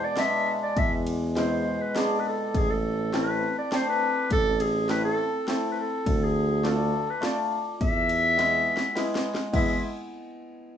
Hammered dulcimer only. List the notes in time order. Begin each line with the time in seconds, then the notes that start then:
Already playing: B2 G#3
0.17 G#3 B3 D4
1.35 B2 G#3 E4
1.95 G#3 B3 D4
3.13 A3 C4 E4
3.71 A3 C4 D4
4.89 A3 C4 E4
5.48 A3 C4 E4
6.63 A3 D4 F4
7.21 A3 D4 F4
8.37 G#3 B3 E4
8.95 G#3 B3 E4
9.53 G#3 B3 E4